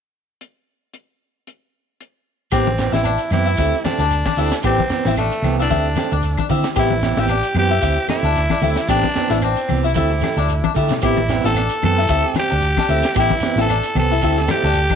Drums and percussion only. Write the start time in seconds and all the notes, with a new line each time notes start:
0.41 closed hi-hat
0.94 closed hi-hat
1.47 closed hi-hat
2.01 closed hi-hat
2.51 kick, closed hi-hat, claves, shekere
2.67 closed hi-hat, high conga
2.78 snare, closed hi-hat, shekere
2.92 snare, closed hi-hat, high conga, shekere
3.04 closed hi-hat, claves, shekere
3.18 closed hi-hat, shekere
3.30 closed hi-hat, high conga, claves, shekere
3.57 kick, closed hi-hat, shekere
3.85 snare, closed hi-hat, high conga, claves, shekere
3.99 snare, closed hi-hat, shekere
4.11 closed hi-hat, shekere
4.25 kick, snare, closed hi-hat, high conga, claves
4.36 closed hi-hat, shekere
4.51 snare, closed hi-hat, shekere
4.62 kick, closed hi-hat, claves, shekere
4.78 kick, closed hi-hat, high conga
4.89 snare, closed hi-hat, shekere
5.04 snare, closed hi-hat, high conga, shekere
5.16 closed hi-hat, claves, shekere
5.32 closed hi-hat, shekere
5.44 open hi-hat, high conga, claves, shekere
5.60 snare
5.70 kick, snare, closed hi-hat, high conga, shekere
5.86 closed hi-hat
5.95 snare, closed hi-hat, high conga, claves, shekere
6.11 closed hi-hat, shekere
6.22 closed hi-hat, shekere
6.38 kick, high conga, claves
6.49 kick, closed hi-hat, high conga, shekere
6.63 snare, shekere
6.75 kick, closed hi-hat, claves, shekere
6.90 closed hi-hat, high conga
7.02 snare, closed hi-hat, shekere
7.16 snare, closed hi-hat, high conga, shekere
7.28 closed hi-hat, claves, shekere
7.43 closed hi-hat, shekere
7.55 closed hi-hat, high conga, claves, shekere
7.82 kick, closed hi-hat, shekere
8.08 snare, closed hi-hat, high conga, claves, shekere
8.23 closed hi-hat, shekere
8.36 snare, closed hi-hat, shekere
8.50 kick, snare, closed hi-hat, high conga, claves
8.61 closed hi-hat, high conga, shekere
8.75 snare, closed hi-hat, shekere
8.88 kick, closed hi-hat, claves, shekere
9.02 kick, closed hi-hat, high conga
9.15 snare, closed hi-hat, shekere
9.29 snare, closed hi-hat, shekere
9.42 closed hi-hat, claves, shekere
9.56 closed hi-hat, shekere
9.68 open hi-hat, high conga, claves, shekere
9.94 kick, closed hi-hat, high conga, shekere
10.11 closed hi-hat
10.21 snare, closed hi-hat, high conga, claves, shekere
10.36 snare, closed hi-hat, shekere
10.48 closed hi-hat, shekere
10.64 kick, high conga, claves
10.75 kick, closed hi-hat, shekere
10.89 snare, low conga, shekere
11.01 kick, closed hi-hat, claves, shekere
11.17 closed hi-hat, high conga
11.28 snare, closed hi-hat, shekere
11.43 snare, closed hi-hat, shekere
11.54 snare, closed hi-hat, claves, shekere
11.70 closed hi-hat, shekere
11.81 closed hi-hat, high conga, claves, shekere
11.98 snare
12.08 kick, closed hi-hat, shekere
12.34 snare, closed hi-hat, high conga, claves, shekere
12.49 closed hi-hat, shekere
12.61 closed hi-hat, shekere
12.77 kick, snare, closed hi-hat, high conga, claves
12.88 closed hi-hat, shekere
13.03 snare, closed hi-hat, shekere
13.15 kick, snare, closed hi-hat, claves, shekere
13.30 kick, closed hi-hat, high conga
13.41 snare, closed hi-hat, shekere
13.57 snare, closed hi-hat, shekere
13.69 snare, closed hi-hat, claves, shekere
13.83 closed hi-hat, shekere
13.95 open hi-hat, high conga, claves, shekere
14.22 kick, closed hi-hat, shekere
14.36 snare, closed hi-hat
14.48 snare, closed hi-hat, high conga, claves, shekere
14.62 snare, closed hi-hat, shekere
14.74 closed hi-hat, shekere
14.90 kick, high conga, claves